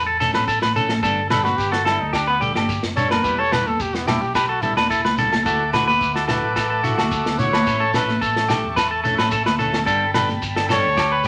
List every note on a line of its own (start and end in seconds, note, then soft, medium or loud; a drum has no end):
0.00 0.29 E2 medium
0.06 0.19 A4 medium
0.20 0.35 A3 medium
0.20 0.34 C#4 medium
0.20 0.34 A4 medium
0.20 0.33 A4 medium
0.20 snare soft
0.20 low conga medium
0.20 shekere medium
0.34 0.60 A1 medium
0.34 0.51 C#4 soft
0.34 0.51 A4 medium
0.34 0.47 B4 medium
0.34 muted clean electric guitar stroke soft
0.34 snare medium
0.34 high conga medium
0.34 low agogo medium
0.34 shekere soft
0.48 0.62 A4 medium
0.48 kick medium
0.48 shekere medium
0.62 0.99 A1 medium
0.62 0.75 B4 medium
0.62 snare medium
0.62 high conga medium
0.74 0.92 E3 medium
0.74 0.92 A3 medium
0.74 0.93 C#4 medium
0.74 1.02 A4 medium
0.74 0.93 A4 medium
0.74 low conga medium
0.74 shekere medium
0.89 snare medium
0.89 high conga medium
0.89 low agogo medium
1.02 1.53 G1 medium
1.02 1.20 G3 medium
1.02 1.20 B3 medium
1.02 1.20 D4 medium
1.02 1.30 A4 medium
1.02 1.21 A4 medium
1.02 kick medium
1.02 shekere medium
1.30 1.47 G3 medium
1.30 1.48 B3 medium
1.30 1.48 D4 medium
1.30 1.45 A4 medium
1.30 1.49 A4 medium
1.30 1.44 B4 medium
1.30 snare medium
1.30 low agogo medium
1.30 shekere medium
1.44 1.59 F#4 medium
1.44 1.71 B4 medium
1.44 snare soft
1.44 high conga medium
1.44 shekere soft
1.57 1.96 G1 loud
1.57 1.73 G4 loud
1.57 kick medium
1.57 shekere medium
1.71 1.84 B3 soft
1.71 1.86 F#4 medium
1.71 1.85 A4 soft
1.71 1.84 A4 medium
1.71 muted clean electric guitar stroke soft
1.71 snare medium
1.85 2.02 G3 medium
1.85 2.03 B3 medium
1.85 2.03 D4 medium
1.85 2.02 E4 medium
1.85 2.12 A4 medium
1.85 2.03 A4 medium
1.85 snare medium
1.85 low conga medium
1.85 low agogo medium
2.00 2.50 D2 medium
2.00 2.16 D#4 medium
2.13 2.28 D4 medium
2.13 2.27 G4 medium
2.13 kick medium
2.13 snare medium
2.13 low agogo medium
2.13 shekere medium
2.27 2.37 B3 medium
2.27 2.41 B4 medium
2.40 2.55 G3 medium
2.40 2.54 D4 medium
2.40 2.55 G4 medium
2.40 2.52 A4 medium
2.40 muted clean electric guitar stroke medium
2.40 low conga medium
2.40 shekere medium
2.54 2.81 G1 medium
2.54 2.72 B3 soft
2.54 2.72 D4 medium
2.54 2.82 G4 medium
2.54 2.71 A4 medium
2.54 snare medium
2.54 high conga medium
2.54 low agogo medium
2.54 shekere soft
2.69 kick medium
2.69 shekere medium
2.83 3.20 F#1 medium
2.83 snare medium
2.83 high conga medium
2.96 3.13 G3 medium
2.96 3.14 B3 medium
2.96 3.14 D4 medium
2.96 3.10 A4 medium
2.96 3.15 A4 medium
2.96 3.13 C#5 medium
2.96 low conga medium
2.96 shekere medium
3.11 3.25 A#4 medium
3.11 3.37 B4 medium
3.11 snare medium
3.11 high conga medium
3.11 low agogo medium
3.23 3.74 E1 medium
3.23 3.41 G3 medium
3.23 3.41 B3 medium
3.23 3.41 E4 medium
3.23 3.41 G4 medium
3.23 3.41 B4 medium
3.23 kick medium
3.23 shekere medium
3.39 3.51 A4 medium
3.39 3.54 C#5 loud
3.51 3.69 G3 medium
3.51 3.69 B3 medium
3.51 3.69 E4 medium
3.51 3.70 G4 medium
3.51 3.69 B4 medium
3.51 muted clean electric guitar stroke medium
3.51 snare medium
3.51 low conga medium
3.51 low agogo medium
3.51 shekere medium
3.67 3.83 A4 medium
3.67 high conga medium
3.67 shekere soft
3.80 4.18 E1 loud
3.80 3.97 G4 medium
3.80 kick medium
3.80 shekere medium
3.93 4.06 B3 soft
3.93 4.08 B3 medium
3.93 4.07 E4 soft
3.93 4.07 G4 medium
3.93 snare medium
4.07 4.24 G3 medium
4.07 4.24 B3 medium
4.07 4.23 E4 medium
4.07 4.25 E4 medium
4.07 4.34 G4 medium
4.07 4.25 G4 medium
4.07 snare medium
4.07 high conga medium
4.07 low agogo medium
4.07 shekere medium
4.22 4.71 B1 medium
4.22 4.34 G4 medium
4.22 shekere soft
4.35 4.50 G4 medium
4.35 4.49 B4 medium
4.35 kick medium
4.35 snare medium
4.35 low agogo medium
4.35 shekere medium
4.49 4.63 F#4 medium
4.49 4.62 A4 medium
4.61 4.77 G3 medium
4.61 4.77 B3 medium
4.61 4.78 E4 medium
4.61 4.77 E4 medium
4.61 4.76 G4 medium
4.61 4.76 A4 medium
4.61 low conga medium
4.61 shekere medium
4.76 5.02 E1 medium
4.76 4.94 B3 soft
4.76 4.89 D4 medium
4.76 4.94 E4 soft
4.76 4.93 G4 soft
4.76 4.90 B4 medium
4.76 snare medium
4.76 high conga medium
4.76 low agogo medium
4.76 shekere soft
4.90 5.07 E4 medium
4.90 5.04 A4 medium
4.90 kick medium
4.90 shekere medium
5.05 5.42 C#2 medium
5.05 5.18 B4 medium
5.05 snare medium
5.05 high conga medium
5.17 5.34 G3 medium
5.17 5.35 B3 medium
5.17 5.35 E4 medium
5.17 5.36 G4 medium
5.17 5.45 A4 medium
5.17 low conga medium
5.17 shekere loud
5.33 snare medium
5.33 high conga medium
5.33 low agogo medium
5.33 shekere soft
5.45 5.96 D2 medium
5.45 5.62 E3 medium
5.45 5.62 A3 medium
5.45 5.63 E4 medium
5.45 5.63 F#4 medium
5.45 5.72 A4 medium
5.45 9.84 E5 medium
5.45 7.65 F#5 medium
5.45 7.65 D6 medium
5.45 kick medium
5.45 shekere medium
5.73 5.90 E3 medium
5.73 5.91 A3 medium
5.73 5.91 E4 medium
5.73 5.91 F#4 medium
5.73 5.86 B4 medium
5.73 snare medium
5.73 low agogo medium
5.73 shekere medium
5.88 6.14 B4 medium
5.88 high conga medium
5.88 shekere soft
6.01 6.39 D2 loud
6.01 kick medium
6.01 shekere medium
6.14 6.28 A3 soft
6.14 6.29 E4 soft
6.14 6.28 F#4 medium
6.14 6.27 A4 medium
6.14 snare medium
6.28 6.46 E3 medium
6.28 6.46 A3 medium
6.28 6.46 E4 medium
6.28 6.47 F#4 medium
6.28 6.54 A4 medium
6.28 6.81 B4 medium
6.28 snare medium
6.28 low conga medium
6.28 low agogo medium
6.28 shekere medium
6.43 6.93 A1 medium
6.56 6.69 A4 medium
6.56 kick medium
6.56 snare medium
6.56 low agogo medium
6.56 shekere medium
6.70 6.83 A4 medium
6.83 6.98 E3 medium
6.83 6.99 A3 medium
6.83 6.98 E4 medium
6.83 6.97 F#4 medium
6.83 7.40 A4 medium
6.83 muted clean electric guitar stroke medium
6.83 low conga medium
6.83 shekere medium
6.98 7.23 D2 medium
6.98 7.15 A3 soft
6.98 7.15 E4 soft
6.98 7.14 F#4 medium
6.98 7.24 F#4 medium
6.98 snare medium
6.98 high conga medium
6.98 low agogo medium
6.98 shekere soft
7.11 kick medium
7.11 shekere medium
7.26 7.63 D2 medium
7.26 snare medium
7.26 high conga medium
7.38 7.56 E3 medium
7.38 7.57 A3 medium
7.38 7.57 E4 medium
7.38 7.57 F#4 medium
7.38 7.94 C#5 loud
7.38 low conga medium
7.38 shekere loud
7.53 7.80 B4 medium
7.53 snare medium
7.53 high conga medium
7.53 low agogo medium
7.66 8.17 A1 medium
7.66 7.83 E3 medium
7.66 7.84 A3 medium
7.66 7.84 C#4 medium
7.66 7.84 A4 medium
7.66 11.28 A5 medium
7.66 9.86 C#6 medium
7.66 kick medium
7.66 shekere medium
7.80 7.93 A4 medium
7.94 8.11 E3 medium
7.94 8.11 A3 medium
7.94 8.12 C#4 medium
7.94 8.12 A4 medium
7.94 8.24 B4 medium
7.94 muted clean electric guitar stroke medium
7.94 snare medium
7.94 low agogo medium
7.94 shekere medium
8.09 snare soft
8.09 high conga medium
8.09 shekere soft
8.21 8.60 A1 medium
8.21 8.48 A4 medium
8.21 8.50 A4 medium
8.21 kick medium
8.21 shekere medium
8.36 8.48 A3 soft
8.36 8.49 C#4 soft
8.36 8.49 A4 medium
8.36 snare medium
8.48 8.66 E3 medium
8.48 8.66 A3 medium
8.48 8.75 G4 medium
8.48 8.67 A4 medium
8.48 muted clean electric guitar stroke medium
8.48 snare medium
8.48 low conga medium
8.48 low agogo medium
8.48 shekere loud
8.64 9.14 E2 medium
8.76 8.90 B4 medium
8.76 kick medium
8.76 snare medium
8.76 low agogo medium
8.76 shekere medium
8.91 9.03 A4 medium
9.04 9.19 E3 medium
9.04 9.19 A3 medium
9.04 9.18 C#4 medium
9.04 9.18 A4 medium
9.04 9.17 A4 medium
9.04 low conga medium
9.04 shekere medium
9.18 9.44 A1 medium
9.18 9.36 A3 soft
9.18 9.35 C#4 medium
9.18 9.35 A4 medium
9.18 9.32 B4 medium
9.18 snare medium
9.18 high conga medium
9.18 low agogo medium
9.18 shekere soft
9.31 9.46 A4 medium
9.31 kick medium
9.31 shekere medium
9.46 9.83 D2 medium
9.46 9.58 B4 medium
9.46 snare medium
9.46 high conga medium
9.58 9.76 E3 medium
9.58 9.77 A3 medium
9.58 9.77 C#4 medium
9.58 9.85 A4 medium
9.58 9.77 A4 medium
9.58 low conga medium
9.58 shekere medium
9.73 snare medium
9.73 high conga medium
9.73 low agogo medium
9.85 10.37 G1 medium
9.85 10.04 G3 medium
9.85 10.04 B3 medium
9.85 10.04 D4 medium
9.85 10.13 A4 medium
9.85 10.04 A4 medium
9.85 11.28 G5 medium
9.85 11.28 B5 medium
9.85 kick medium
9.85 shekere medium
10.14 10.32 G3 medium
10.14 10.32 B3 medium
10.14 10.33 D4 medium
10.14 10.33 A4 medium
10.14 10.28 B4 medium
10.14 snare medium
10.14 low agogo medium
10.14 shekere medium
10.29 snare soft
10.29 high conga medium
10.29 shekere soft
10.42 10.81 G1 loud
10.42 kick medium
10.42 shekere medium
10.55 10.68 B3 soft
10.55 10.69 D4 soft
10.55 10.69 A4 medium
10.55 10.68 A4 medium
10.55 snare medium
10.69 10.87 G3 medium
10.69 10.87 B3 medium
10.69 10.87 D4 medium
10.69 10.96 A4 medium
10.69 10.88 A4 medium
10.69 11.27 C#5 loud
10.69 snare medium
10.69 low conga medium
10.69 low agogo medium
10.69 shekere medium
10.84 11.28 D2 medium
10.97 11.11 G4 medium
10.97 kick medium
10.97 snare medium
10.97 low agogo medium
10.97 shekere medium
11.12 11.25 B4 medium
11.24 11.28 G3 medium
11.24 11.28 B3 medium
11.24 shekere medium